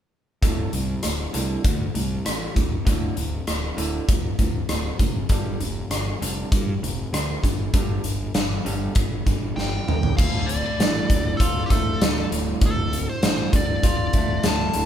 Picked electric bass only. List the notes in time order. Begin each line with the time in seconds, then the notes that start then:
0.42 D1
0.73 C2
1.05 D1
1.35 C2
1.64 D2
1.96 C2
2.27 A1
2.56 D1
2.87 D1
3.18 D1
3.48 D1
3.78 D1
4.08 D1
4.39 D1
4.69 D1
5.00 F1
5.29 G1
5.60 F1
5.90 G1
6.22 F1
6.52 G2
6.82 F1
7.13 D2
7.44 G1
7.74 G1
8.05 G1
8.35 G1
8.66 G1
8.96 G1
9.26 G1
9.57 G1
9.87 A#1
10.19 D1
10.79 A1
11.10 D1
11.40 D1
11.71 D1
12.01 D1
12.32 D1
12.61 D1
13.23 A1
13.53 D1
13.84 D1
14.14 D1
14.44 D1
14.75 D1